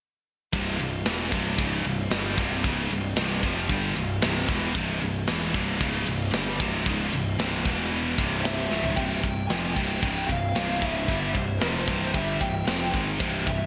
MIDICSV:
0, 0, Header, 1, 5, 480
1, 0, Start_track
1, 0, Tempo, 528169
1, 485, Time_signature, 4, 2, 24, 8
1, 12416, End_track
2, 0, Start_track
2, 0, Title_t, "Lead electric guitar"
2, 0, Program_c, 0, 29
2, 7669, Note_on_c, 0, 76, 92
2, 8141, Note_on_c, 0, 79, 110
2, 8167, Note_off_c, 0, 76, 0
2, 8368, Note_off_c, 0, 79, 0
2, 8379, Note_on_c, 0, 79, 92
2, 8612, Note_off_c, 0, 79, 0
2, 8616, Note_on_c, 0, 80, 99
2, 8851, Note_off_c, 0, 80, 0
2, 8855, Note_on_c, 0, 79, 94
2, 9090, Note_off_c, 0, 79, 0
2, 9101, Note_on_c, 0, 79, 86
2, 9335, Note_off_c, 0, 79, 0
2, 9338, Note_on_c, 0, 77, 85
2, 9820, Note_on_c, 0, 76, 83
2, 9843, Note_off_c, 0, 77, 0
2, 10276, Note_off_c, 0, 76, 0
2, 10304, Note_on_c, 0, 72, 82
2, 10529, Note_off_c, 0, 72, 0
2, 10540, Note_on_c, 0, 72, 89
2, 11032, Note_on_c, 0, 76, 87
2, 11045, Note_off_c, 0, 72, 0
2, 11259, Note_off_c, 0, 76, 0
2, 11277, Note_on_c, 0, 79, 81
2, 11726, Note_off_c, 0, 79, 0
2, 11996, Note_on_c, 0, 72, 82
2, 12235, Note_on_c, 0, 76, 89
2, 12247, Note_off_c, 0, 72, 0
2, 12416, Note_off_c, 0, 76, 0
2, 12416, End_track
3, 0, Start_track
3, 0, Title_t, "Distorted electric guitar"
3, 0, Program_c, 1, 30
3, 481, Note_on_c, 1, 36, 103
3, 487, Note_on_c, 1, 43, 107
3, 491, Note_on_c, 1, 48, 112
3, 707, Note_off_c, 1, 36, 0
3, 714, Note_off_c, 1, 43, 0
3, 718, Note_on_c, 1, 36, 58
3, 720, Note_off_c, 1, 48, 0
3, 725, Note_on_c, 1, 43, 61
3, 913, Note_off_c, 1, 36, 0
3, 916, Note_off_c, 1, 43, 0
3, 958, Note_on_c, 1, 40, 92
3, 965, Note_on_c, 1, 47, 103
3, 970, Note_on_c, 1, 52, 96
3, 1193, Note_off_c, 1, 40, 0
3, 1197, Note_off_c, 1, 47, 0
3, 1197, Note_on_c, 1, 36, 99
3, 1199, Note_off_c, 1, 52, 0
3, 1202, Note_on_c, 1, 43, 90
3, 1211, Note_on_c, 1, 48, 93
3, 1433, Note_off_c, 1, 36, 0
3, 1435, Note_off_c, 1, 43, 0
3, 1436, Note_on_c, 1, 37, 82
3, 1440, Note_off_c, 1, 48, 0
3, 1441, Note_on_c, 1, 44, 96
3, 1447, Note_on_c, 1, 49, 91
3, 1672, Note_off_c, 1, 37, 0
3, 1674, Note_off_c, 1, 44, 0
3, 1677, Note_off_c, 1, 49, 0
3, 1679, Note_on_c, 1, 36, 51
3, 1684, Note_on_c, 1, 43, 67
3, 1872, Note_off_c, 1, 36, 0
3, 1874, Note_off_c, 1, 43, 0
3, 1917, Note_on_c, 1, 43, 91
3, 1921, Note_on_c, 1, 50, 100
3, 1928, Note_on_c, 1, 55, 89
3, 2152, Note_off_c, 1, 43, 0
3, 2154, Note_off_c, 1, 50, 0
3, 2157, Note_off_c, 1, 55, 0
3, 2157, Note_on_c, 1, 36, 97
3, 2165, Note_on_c, 1, 43, 95
3, 2170, Note_on_c, 1, 48, 102
3, 2391, Note_off_c, 1, 36, 0
3, 2395, Note_off_c, 1, 43, 0
3, 2398, Note_off_c, 1, 48, 0
3, 2403, Note_on_c, 1, 37, 103
3, 2411, Note_on_c, 1, 44, 91
3, 2416, Note_on_c, 1, 49, 104
3, 2634, Note_off_c, 1, 37, 0
3, 2638, Note_off_c, 1, 44, 0
3, 2641, Note_off_c, 1, 49, 0
3, 2650, Note_on_c, 1, 36, 65
3, 2654, Note_on_c, 1, 43, 82
3, 2837, Note_off_c, 1, 36, 0
3, 2839, Note_off_c, 1, 43, 0
3, 2883, Note_on_c, 1, 36, 92
3, 2889, Note_on_c, 1, 43, 105
3, 2892, Note_on_c, 1, 48, 108
3, 3114, Note_off_c, 1, 36, 0
3, 3117, Note_off_c, 1, 43, 0
3, 3118, Note_off_c, 1, 48, 0
3, 3122, Note_on_c, 1, 41, 88
3, 3131, Note_on_c, 1, 48, 97
3, 3136, Note_on_c, 1, 53, 105
3, 3353, Note_off_c, 1, 41, 0
3, 3358, Note_off_c, 1, 48, 0
3, 3360, Note_off_c, 1, 53, 0
3, 3361, Note_on_c, 1, 43, 88
3, 3367, Note_on_c, 1, 50, 83
3, 3373, Note_on_c, 1, 55, 90
3, 3592, Note_off_c, 1, 43, 0
3, 3595, Note_off_c, 1, 50, 0
3, 3598, Note_off_c, 1, 55, 0
3, 3601, Note_on_c, 1, 36, 55
3, 3606, Note_on_c, 1, 43, 68
3, 3791, Note_off_c, 1, 36, 0
3, 3794, Note_off_c, 1, 43, 0
3, 3836, Note_on_c, 1, 36, 80
3, 3844, Note_on_c, 1, 43, 98
3, 3849, Note_on_c, 1, 48, 106
3, 4069, Note_off_c, 1, 36, 0
3, 4073, Note_off_c, 1, 43, 0
3, 4076, Note_off_c, 1, 48, 0
3, 4079, Note_on_c, 1, 40, 93
3, 4085, Note_on_c, 1, 47, 108
3, 4088, Note_on_c, 1, 52, 105
3, 4311, Note_off_c, 1, 40, 0
3, 4314, Note_off_c, 1, 47, 0
3, 4316, Note_off_c, 1, 52, 0
3, 4318, Note_on_c, 1, 36, 93
3, 4324, Note_on_c, 1, 43, 122
3, 4333, Note_on_c, 1, 48, 111
3, 4550, Note_off_c, 1, 36, 0
3, 4553, Note_off_c, 1, 43, 0
3, 4557, Note_off_c, 1, 48, 0
3, 4562, Note_on_c, 1, 36, 63
3, 4564, Note_on_c, 1, 43, 73
3, 4751, Note_off_c, 1, 36, 0
3, 4752, Note_off_c, 1, 43, 0
3, 4794, Note_on_c, 1, 40, 97
3, 4799, Note_on_c, 1, 47, 99
3, 4807, Note_on_c, 1, 52, 116
3, 5028, Note_off_c, 1, 40, 0
3, 5031, Note_off_c, 1, 47, 0
3, 5034, Note_off_c, 1, 52, 0
3, 5040, Note_on_c, 1, 36, 98
3, 5048, Note_on_c, 1, 43, 100
3, 5051, Note_on_c, 1, 48, 100
3, 5271, Note_off_c, 1, 36, 0
3, 5275, Note_off_c, 1, 43, 0
3, 5276, Note_off_c, 1, 48, 0
3, 5279, Note_on_c, 1, 37, 101
3, 5287, Note_on_c, 1, 44, 87
3, 5289, Note_on_c, 1, 49, 106
3, 5510, Note_off_c, 1, 37, 0
3, 5514, Note_off_c, 1, 44, 0
3, 5515, Note_off_c, 1, 49, 0
3, 5519, Note_on_c, 1, 36, 66
3, 5523, Note_on_c, 1, 43, 73
3, 5709, Note_off_c, 1, 36, 0
3, 5711, Note_off_c, 1, 43, 0
3, 5758, Note_on_c, 1, 43, 87
3, 5760, Note_on_c, 1, 50, 101
3, 5768, Note_on_c, 1, 55, 106
3, 5989, Note_off_c, 1, 43, 0
3, 5991, Note_off_c, 1, 50, 0
3, 5995, Note_off_c, 1, 55, 0
3, 5996, Note_on_c, 1, 36, 94
3, 6003, Note_on_c, 1, 43, 93
3, 6007, Note_on_c, 1, 48, 111
3, 6229, Note_off_c, 1, 36, 0
3, 6232, Note_off_c, 1, 43, 0
3, 6234, Note_off_c, 1, 48, 0
3, 6237, Note_on_c, 1, 37, 96
3, 6247, Note_on_c, 1, 44, 106
3, 6249, Note_on_c, 1, 49, 96
3, 6469, Note_off_c, 1, 37, 0
3, 6474, Note_off_c, 1, 44, 0
3, 6475, Note_off_c, 1, 49, 0
3, 6482, Note_on_c, 1, 36, 66
3, 6485, Note_on_c, 1, 43, 75
3, 6671, Note_off_c, 1, 36, 0
3, 6672, Note_off_c, 1, 43, 0
3, 6717, Note_on_c, 1, 36, 88
3, 6723, Note_on_c, 1, 43, 88
3, 6729, Note_on_c, 1, 48, 99
3, 6949, Note_off_c, 1, 36, 0
3, 6952, Note_off_c, 1, 43, 0
3, 6955, Note_off_c, 1, 48, 0
3, 6955, Note_on_c, 1, 40, 84
3, 6961, Note_on_c, 1, 47, 93
3, 6967, Note_on_c, 1, 52, 99
3, 7428, Note_off_c, 1, 40, 0
3, 7431, Note_off_c, 1, 47, 0
3, 7434, Note_off_c, 1, 52, 0
3, 7436, Note_on_c, 1, 36, 70
3, 7442, Note_on_c, 1, 43, 75
3, 7444, Note_on_c, 1, 48, 98
3, 7908, Note_off_c, 1, 36, 0
3, 7912, Note_off_c, 1, 43, 0
3, 7913, Note_off_c, 1, 48, 0
3, 7917, Note_on_c, 1, 37, 92
3, 7922, Note_on_c, 1, 44, 101
3, 7929, Note_on_c, 1, 49, 113
3, 8147, Note_off_c, 1, 37, 0
3, 8151, Note_on_c, 1, 36, 100
3, 8152, Note_off_c, 1, 44, 0
3, 8155, Note_off_c, 1, 49, 0
3, 8156, Note_on_c, 1, 43, 98
3, 8165, Note_on_c, 1, 48, 102
3, 8386, Note_off_c, 1, 36, 0
3, 8389, Note_off_c, 1, 43, 0
3, 8393, Note_off_c, 1, 48, 0
3, 8396, Note_on_c, 1, 36, 63
3, 8401, Note_on_c, 1, 43, 67
3, 8588, Note_off_c, 1, 36, 0
3, 8591, Note_off_c, 1, 43, 0
3, 8638, Note_on_c, 1, 41, 77
3, 8640, Note_on_c, 1, 48, 89
3, 8647, Note_on_c, 1, 53, 89
3, 8870, Note_off_c, 1, 41, 0
3, 8871, Note_off_c, 1, 48, 0
3, 8875, Note_off_c, 1, 53, 0
3, 8875, Note_on_c, 1, 36, 76
3, 8884, Note_on_c, 1, 43, 90
3, 8889, Note_on_c, 1, 48, 95
3, 9109, Note_off_c, 1, 36, 0
3, 9114, Note_off_c, 1, 43, 0
3, 9115, Note_on_c, 1, 37, 78
3, 9116, Note_off_c, 1, 48, 0
3, 9121, Note_on_c, 1, 44, 92
3, 9124, Note_on_c, 1, 49, 91
3, 9348, Note_off_c, 1, 37, 0
3, 9350, Note_off_c, 1, 44, 0
3, 9351, Note_on_c, 1, 36, 62
3, 9354, Note_off_c, 1, 49, 0
3, 9354, Note_on_c, 1, 43, 60
3, 9547, Note_off_c, 1, 36, 0
3, 9548, Note_off_c, 1, 43, 0
3, 9589, Note_on_c, 1, 36, 89
3, 9599, Note_on_c, 1, 43, 92
3, 9603, Note_on_c, 1, 48, 96
3, 9826, Note_off_c, 1, 36, 0
3, 9832, Note_off_c, 1, 43, 0
3, 9833, Note_off_c, 1, 48, 0
3, 9835, Note_on_c, 1, 37, 85
3, 9841, Note_on_c, 1, 44, 90
3, 9844, Note_on_c, 1, 49, 88
3, 10069, Note_off_c, 1, 37, 0
3, 10073, Note_off_c, 1, 44, 0
3, 10073, Note_on_c, 1, 43, 95
3, 10074, Note_off_c, 1, 49, 0
3, 10076, Note_on_c, 1, 50, 96
3, 10083, Note_on_c, 1, 55, 114
3, 10309, Note_off_c, 1, 43, 0
3, 10311, Note_off_c, 1, 50, 0
3, 10314, Note_off_c, 1, 55, 0
3, 10315, Note_on_c, 1, 36, 61
3, 10320, Note_on_c, 1, 43, 71
3, 10509, Note_off_c, 1, 36, 0
3, 10512, Note_off_c, 1, 43, 0
3, 10557, Note_on_c, 1, 41, 89
3, 10562, Note_on_c, 1, 48, 83
3, 10567, Note_on_c, 1, 53, 105
3, 10791, Note_off_c, 1, 41, 0
3, 10794, Note_off_c, 1, 48, 0
3, 10795, Note_on_c, 1, 36, 71
3, 10796, Note_off_c, 1, 53, 0
3, 10804, Note_on_c, 1, 43, 95
3, 10811, Note_on_c, 1, 48, 93
3, 11026, Note_off_c, 1, 43, 0
3, 11031, Note_off_c, 1, 36, 0
3, 11036, Note_on_c, 1, 43, 79
3, 11038, Note_off_c, 1, 48, 0
3, 11043, Note_on_c, 1, 50, 88
3, 11048, Note_on_c, 1, 55, 94
3, 11272, Note_off_c, 1, 43, 0
3, 11275, Note_off_c, 1, 50, 0
3, 11277, Note_off_c, 1, 55, 0
3, 11281, Note_on_c, 1, 36, 61
3, 11285, Note_on_c, 1, 43, 64
3, 11473, Note_off_c, 1, 36, 0
3, 11475, Note_off_c, 1, 43, 0
3, 11513, Note_on_c, 1, 41, 90
3, 11519, Note_on_c, 1, 48, 101
3, 11525, Note_on_c, 1, 53, 99
3, 11743, Note_off_c, 1, 41, 0
3, 11746, Note_on_c, 1, 44, 84
3, 11750, Note_off_c, 1, 48, 0
3, 11754, Note_on_c, 1, 51, 101
3, 11755, Note_off_c, 1, 53, 0
3, 11759, Note_on_c, 1, 56, 95
3, 11987, Note_off_c, 1, 44, 0
3, 11991, Note_off_c, 1, 51, 0
3, 11991, Note_on_c, 1, 36, 99
3, 11993, Note_off_c, 1, 56, 0
3, 11996, Note_on_c, 1, 43, 106
3, 12001, Note_on_c, 1, 48, 111
3, 12230, Note_off_c, 1, 36, 0
3, 12232, Note_off_c, 1, 43, 0
3, 12235, Note_off_c, 1, 48, 0
3, 12240, Note_on_c, 1, 36, 65
3, 12243, Note_on_c, 1, 43, 75
3, 12416, Note_off_c, 1, 36, 0
3, 12416, Note_off_c, 1, 43, 0
3, 12416, End_track
4, 0, Start_track
4, 0, Title_t, "Picked electric bass"
4, 0, Program_c, 2, 34
4, 485, Note_on_c, 2, 24, 87
4, 708, Note_off_c, 2, 24, 0
4, 720, Note_on_c, 2, 24, 70
4, 945, Note_off_c, 2, 24, 0
4, 962, Note_on_c, 2, 28, 87
4, 1185, Note_off_c, 2, 28, 0
4, 1200, Note_on_c, 2, 24, 86
4, 1424, Note_off_c, 2, 24, 0
4, 1440, Note_on_c, 2, 25, 77
4, 1664, Note_off_c, 2, 25, 0
4, 1675, Note_on_c, 2, 24, 78
4, 1901, Note_off_c, 2, 24, 0
4, 1918, Note_on_c, 2, 31, 89
4, 2142, Note_off_c, 2, 31, 0
4, 2158, Note_on_c, 2, 24, 102
4, 2382, Note_off_c, 2, 24, 0
4, 2399, Note_on_c, 2, 25, 102
4, 2623, Note_off_c, 2, 25, 0
4, 2640, Note_on_c, 2, 24, 77
4, 2863, Note_off_c, 2, 24, 0
4, 2877, Note_on_c, 2, 24, 102
4, 3101, Note_off_c, 2, 24, 0
4, 3119, Note_on_c, 2, 29, 94
4, 3342, Note_off_c, 2, 29, 0
4, 3360, Note_on_c, 2, 31, 78
4, 3582, Note_off_c, 2, 31, 0
4, 3603, Note_on_c, 2, 24, 85
4, 3824, Note_off_c, 2, 24, 0
4, 3843, Note_on_c, 2, 24, 96
4, 4064, Note_off_c, 2, 24, 0
4, 4075, Note_on_c, 2, 28, 97
4, 4299, Note_off_c, 2, 28, 0
4, 4316, Note_on_c, 2, 24, 97
4, 4539, Note_off_c, 2, 24, 0
4, 4560, Note_on_c, 2, 24, 82
4, 4782, Note_off_c, 2, 24, 0
4, 4801, Note_on_c, 2, 28, 91
4, 5022, Note_off_c, 2, 28, 0
4, 5038, Note_on_c, 2, 24, 97
4, 5260, Note_off_c, 2, 24, 0
4, 5279, Note_on_c, 2, 25, 89
4, 5501, Note_off_c, 2, 25, 0
4, 5514, Note_on_c, 2, 24, 83
4, 5738, Note_off_c, 2, 24, 0
4, 5758, Note_on_c, 2, 31, 92
4, 5980, Note_off_c, 2, 31, 0
4, 5998, Note_on_c, 2, 24, 100
4, 6220, Note_off_c, 2, 24, 0
4, 6237, Note_on_c, 2, 25, 94
4, 6459, Note_off_c, 2, 25, 0
4, 6478, Note_on_c, 2, 24, 84
4, 6700, Note_off_c, 2, 24, 0
4, 6712, Note_on_c, 2, 24, 90
4, 6937, Note_off_c, 2, 24, 0
4, 6953, Note_on_c, 2, 28, 89
4, 7401, Note_off_c, 2, 28, 0
4, 7434, Note_on_c, 2, 24, 91
4, 7881, Note_off_c, 2, 24, 0
4, 7917, Note_on_c, 2, 25, 94
4, 8139, Note_off_c, 2, 25, 0
4, 8154, Note_on_c, 2, 24, 98
4, 8378, Note_off_c, 2, 24, 0
4, 8391, Note_on_c, 2, 24, 67
4, 8617, Note_off_c, 2, 24, 0
4, 8637, Note_on_c, 2, 29, 97
4, 8860, Note_off_c, 2, 29, 0
4, 8874, Note_on_c, 2, 24, 92
4, 9099, Note_off_c, 2, 24, 0
4, 9110, Note_on_c, 2, 25, 77
4, 9337, Note_off_c, 2, 25, 0
4, 9354, Note_on_c, 2, 24, 78
4, 9579, Note_off_c, 2, 24, 0
4, 9589, Note_on_c, 2, 24, 82
4, 9817, Note_off_c, 2, 24, 0
4, 9832, Note_on_c, 2, 25, 91
4, 10058, Note_off_c, 2, 25, 0
4, 10069, Note_on_c, 2, 31, 102
4, 10297, Note_off_c, 2, 31, 0
4, 10312, Note_on_c, 2, 24, 77
4, 10539, Note_off_c, 2, 24, 0
4, 10553, Note_on_c, 2, 29, 85
4, 10780, Note_off_c, 2, 29, 0
4, 10793, Note_on_c, 2, 24, 90
4, 11020, Note_off_c, 2, 24, 0
4, 11036, Note_on_c, 2, 31, 81
4, 11262, Note_off_c, 2, 31, 0
4, 11279, Note_on_c, 2, 24, 77
4, 11503, Note_off_c, 2, 24, 0
4, 11514, Note_on_c, 2, 29, 77
4, 11741, Note_off_c, 2, 29, 0
4, 11756, Note_on_c, 2, 32, 89
4, 11982, Note_off_c, 2, 32, 0
4, 11998, Note_on_c, 2, 24, 91
4, 12224, Note_off_c, 2, 24, 0
4, 12242, Note_on_c, 2, 24, 82
4, 12416, Note_off_c, 2, 24, 0
4, 12416, End_track
5, 0, Start_track
5, 0, Title_t, "Drums"
5, 480, Note_on_c, 9, 51, 109
5, 483, Note_on_c, 9, 36, 108
5, 571, Note_off_c, 9, 51, 0
5, 574, Note_off_c, 9, 36, 0
5, 723, Note_on_c, 9, 51, 78
5, 814, Note_off_c, 9, 51, 0
5, 960, Note_on_c, 9, 51, 104
5, 963, Note_on_c, 9, 38, 105
5, 1051, Note_off_c, 9, 51, 0
5, 1053, Note_off_c, 9, 38, 0
5, 1201, Note_on_c, 9, 36, 87
5, 1202, Note_on_c, 9, 51, 67
5, 1292, Note_off_c, 9, 36, 0
5, 1293, Note_off_c, 9, 51, 0
5, 1440, Note_on_c, 9, 36, 101
5, 1440, Note_on_c, 9, 51, 100
5, 1531, Note_off_c, 9, 36, 0
5, 1531, Note_off_c, 9, 51, 0
5, 1678, Note_on_c, 9, 51, 76
5, 1769, Note_off_c, 9, 51, 0
5, 1919, Note_on_c, 9, 51, 98
5, 1921, Note_on_c, 9, 38, 109
5, 2010, Note_off_c, 9, 51, 0
5, 2012, Note_off_c, 9, 38, 0
5, 2160, Note_on_c, 9, 36, 96
5, 2166, Note_on_c, 9, 51, 78
5, 2251, Note_off_c, 9, 36, 0
5, 2257, Note_off_c, 9, 51, 0
5, 2401, Note_on_c, 9, 36, 109
5, 2402, Note_on_c, 9, 51, 96
5, 2492, Note_off_c, 9, 36, 0
5, 2493, Note_off_c, 9, 51, 0
5, 2642, Note_on_c, 9, 51, 73
5, 2732, Note_off_c, 9, 51, 0
5, 2876, Note_on_c, 9, 51, 88
5, 2879, Note_on_c, 9, 38, 107
5, 2967, Note_off_c, 9, 51, 0
5, 2970, Note_off_c, 9, 38, 0
5, 3118, Note_on_c, 9, 36, 83
5, 3119, Note_on_c, 9, 51, 60
5, 3209, Note_off_c, 9, 36, 0
5, 3210, Note_off_c, 9, 51, 0
5, 3355, Note_on_c, 9, 51, 93
5, 3358, Note_on_c, 9, 36, 102
5, 3445, Note_off_c, 9, 51, 0
5, 3449, Note_off_c, 9, 36, 0
5, 3600, Note_on_c, 9, 51, 63
5, 3691, Note_off_c, 9, 51, 0
5, 3836, Note_on_c, 9, 51, 97
5, 3839, Note_on_c, 9, 38, 101
5, 3927, Note_off_c, 9, 51, 0
5, 3930, Note_off_c, 9, 38, 0
5, 4077, Note_on_c, 9, 36, 102
5, 4079, Note_on_c, 9, 51, 65
5, 4168, Note_off_c, 9, 36, 0
5, 4170, Note_off_c, 9, 51, 0
5, 4313, Note_on_c, 9, 51, 93
5, 4317, Note_on_c, 9, 36, 113
5, 4404, Note_off_c, 9, 51, 0
5, 4407, Note_off_c, 9, 36, 0
5, 4556, Note_on_c, 9, 51, 80
5, 4647, Note_off_c, 9, 51, 0
5, 4793, Note_on_c, 9, 51, 108
5, 4796, Note_on_c, 9, 38, 107
5, 4884, Note_off_c, 9, 51, 0
5, 4887, Note_off_c, 9, 38, 0
5, 5038, Note_on_c, 9, 36, 88
5, 5039, Note_on_c, 9, 51, 60
5, 5129, Note_off_c, 9, 36, 0
5, 5130, Note_off_c, 9, 51, 0
5, 5278, Note_on_c, 9, 36, 103
5, 5278, Note_on_c, 9, 51, 109
5, 5369, Note_off_c, 9, 36, 0
5, 5369, Note_off_c, 9, 51, 0
5, 5516, Note_on_c, 9, 51, 83
5, 5607, Note_off_c, 9, 51, 0
5, 5757, Note_on_c, 9, 51, 95
5, 5760, Note_on_c, 9, 38, 123
5, 5848, Note_off_c, 9, 51, 0
5, 5851, Note_off_c, 9, 38, 0
5, 5998, Note_on_c, 9, 36, 92
5, 6000, Note_on_c, 9, 51, 73
5, 6089, Note_off_c, 9, 36, 0
5, 6091, Note_off_c, 9, 51, 0
5, 6236, Note_on_c, 9, 36, 102
5, 6238, Note_on_c, 9, 51, 115
5, 6327, Note_off_c, 9, 36, 0
5, 6329, Note_off_c, 9, 51, 0
5, 6479, Note_on_c, 9, 51, 76
5, 6570, Note_off_c, 9, 51, 0
5, 6720, Note_on_c, 9, 51, 99
5, 6723, Note_on_c, 9, 38, 107
5, 6811, Note_off_c, 9, 51, 0
5, 6814, Note_off_c, 9, 38, 0
5, 6953, Note_on_c, 9, 49, 86
5, 6956, Note_on_c, 9, 36, 101
5, 7043, Note_off_c, 9, 49, 0
5, 7047, Note_off_c, 9, 36, 0
5, 7437, Note_on_c, 9, 36, 100
5, 7440, Note_on_c, 9, 51, 76
5, 7528, Note_off_c, 9, 36, 0
5, 7531, Note_off_c, 9, 51, 0
5, 7679, Note_on_c, 9, 51, 91
5, 7682, Note_on_c, 9, 38, 122
5, 7770, Note_off_c, 9, 51, 0
5, 7773, Note_off_c, 9, 38, 0
5, 7920, Note_on_c, 9, 38, 58
5, 8011, Note_off_c, 9, 38, 0
5, 8033, Note_on_c, 9, 43, 81
5, 8124, Note_off_c, 9, 43, 0
5, 8147, Note_on_c, 9, 53, 59
5, 8153, Note_on_c, 9, 36, 100
5, 8238, Note_off_c, 9, 53, 0
5, 8244, Note_off_c, 9, 36, 0
5, 8393, Note_on_c, 9, 36, 88
5, 8484, Note_off_c, 9, 36, 0
5, 8633, Note_on_c, 9, 53, 67
5, 8636, Note_on_c, 9, 38, 93
5, 8724, Note_off_c, 9, 53, 0
5, 8727, Note_off_c, 9, 38, 0
5, 8874, Note_on_c, 9, 36, 89
5, 8964, Note_off_c, 9, 36, 0
5, 9113, Note_on_c, 9, 36, 96
5, 9113, Note_on_c, 9, 53, 73
5, 9204, Note_off_c, 9, 36, 0
5, 9204, Note_off_c, 9, 53, 0
5, 9354, Note_on_c, 9, 36, 90
5, 9445, Note_off_c, 9, 36, 0
5, 9595, Note_on_c, 9, 53, 77
5, 9597, Note_on_c, 9, 38, 106
5, 9686, Note_off_c, 9, 53, 0
5, 9688, Note_off_c, 9, 38, 0
5, 9833, Note_on_c, 9, 36, 105
5, 9924, Note_off_c, 9, 36, 0
5, 10073, Note_on_c, 9, 36, 106
5, 10074, Note_on_c, 9, 53, 68
5, 10164, Note_off_c, 9, 36, 0
5, 10165, Note_off_c, 9, 53, 0
5, 10313, Note_on_c, 9, 36, 85
5, 10404, Note_off_c, 9, 36, 0
5, 10553, Note_on_c, 9, 53, 65
5, 10556, Note_on_c, 9, 38, 112
5, 10644, Note_off_c, 9, 53, 0
5, 10647, Note_off_c, 9, 38, 0
5, 10794, Note_on_c, 9, 36, 88
5, 10885, Note_off_c, 9, 36, 0
5, 11035, Note_on_c, 9, 36, 107
5, 11036, Note_on_c, 9, 53, 67
5, 11126, Note_off_c, 9, 36, 0
5, 11127, Note_off_c, 9, 53, 0
5, 11277, Note_on_c, 9, 36, 87
5, 11368, Note_off_c, 9, 36, 0
5, 11517, Note_on_c, 9, 53, 63
5, 11520, Note_on_c, 9, 38, 114
5, 11608, Note_off_c, 9, 53, 0
5, 11611, Note_off_c, 9, 38, 0
5, 11757, Note_on_c, 9, 36, 93
5, 11848, Note_off_c, 9, 36, 0
5, 11998, Note_on_c, 9, 36, 102
5, 12002, Note_on_c, 9, 53, 70
5, 12089, Note_off_c, 9, 36, 0
5, 12092, Note_off_c, 9, 53, 0
5, 12240, Note_on_c, 9, 36, 95
5, 12331, Note_off_c, 9, 36, 0
5, 12416, End_track
0, 0, End_of_file